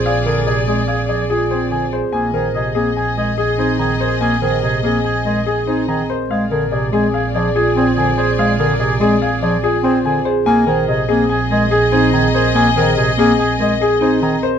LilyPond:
<<
  \new Staff \with { instrumentName = "Grand piano" } { \time 5/4 \key aes \lydian \tempo 4 = 144 f''8 bes'8 d''8 aes'8 f''8 d''8 aes'8 c''8 aes''8 c''8 | aes''8 bes'8 ees''8 aes'8 aes''8 ees''8 aes'8 c''8 bes''8 c''8 | aes''8 bes'8 ees''8 aes'8 aes''8 ees''8 aes'8 c''8 bes''8 c''8 | f''8 bes'8 d''8 aes'8 f''8 d''8 aes'8 c''8 aes''8 c''8 |
f''8 bes'8 d''8 aes'8 f''8 d''8 aes'8 c''8 aes''8 c''8 | aes''8 bes'8 ees''8 aes'8 aes''8 ees''8 aes'8 c''8 bes''8 c''8 | aes''8 bes'8 ees''8 aes'8 aes''8 ees''8 aes'8 c''8 bes''8 c''8 | }
  \new Staff \with { instrumentName = "String section" } { \time 5/4 \key aes \lydian <aes' d''>1~ <aes' d''>8 r8 | <aes' ees''>1~ <aes' ees''>4~ | <aes' ees''>1~ <aes' ees''>8 r8 | <aes' d''>1~ <aes' d''>4~ |
<aes' d''>1~ <aes' d''>8 r8 | <aes' ees''>1~ <aes' ees''>4~ | <aes' ees''>1~ <aes' ees''>8 r8 | }
  \new Staff \with { instrumentName = "Marimba" } { \time 5/4 \key aes \lydian r8 bes'8 r8 c'8 r8 aes'8 f'8 c'8 c''8 aes'8 | r8 c''8 r8 c'8 r8 bes'8 aes'8 c'8 ees''8 bes'8 | r8 c''8 r8 c'8 r8 bes'8 aes'8 c'8 ees''8 bes'8 | r8 bes'8 r8 c'8 r8 aes'8 f'8 c'8 c''8 aes'8 |
r8 bes'8 r8 c'8 r8 aes'8 f'8 c'8 c''8 aes'8 | r8 c''8 r8 c'8 r8 bes'8 aes'8 c'8 ees''8 bes'8 | r8 c''8 r8 c'8 r8 bes'8 aes'8 c'8 ees''8 bes'8 | }
  \new Staff \with { instrumentName = "Oboe" } { \time 5/4 \key aes \lydian aes'8 aes'8 aes'8 aes'8 aes'8 aes'8 aes'8 aes'8 aes'8 r8 | aes'8 aes'8 aes'8 aes'8 aes'8 aes'8 aes'8 aes'8 aes'8 aes'8 | aes'8 aes'8 aes'8 aes'8 aes'8 aes'8 aes'8 aes'8 aes'8 r8 | aes'8 aes'8 aes'8 aes'8 aes'8 aes'8 aes'8 aes'8 aes'8 aes'8 |
aes'8 aes'8 aes'8 aes'8 aes'8 aes'8 aes'8 aes'8 aes'8 r8 | aes'8 aes'8 aes'8 aes'8 aes'8 aes'8 aes'8 aes'8 aes'8 aes'8 | aes'8 aes'8 aes'8 aes'8 aes'8 aes'8 aes'8 aes'8 aes'8 r8 | }
  \new Staff \with { instrumentName = "Bass clarinet" } { \clef bass \time 5/4 \key aes \lydian r8 d8 c8 aes8 r8 f8 r8 c'8 d8 r8 | bes8 ees8 c8 bes8 r8 aes8 r8 ees'8 ees8 r8 | bes8 ees8 c8 bes8 r8 aes8 r8 ees'8 ees8 r8 | aes8 d8 c8 aes8 r8 f8 r8 c'8 d8 r8 |
aes8 d8 c8 aes8 r8 f8 r8 c'8 d8 r8 | bes8 ees8 c8 bes8 r8 aes8 r8 ees'8 ees8 r8 | bes8 ees8 c8 bes8 r8 aes8 r8 ees'8 ees8 r8 | }
  \new Staff \with { instrumentName = "Double bass" } { \clef bass \time 5/4 \key aes \lydian bes,,1~ bes,,4 | bes,,1~ bes,,4~ | bes,,1~ bes,,4 | bes,,1~ bes,,4~ |
bes,,1~ bes,,4 | bes,,1~ bes,,4~ | bes,,1~ bes,,4 | }
>>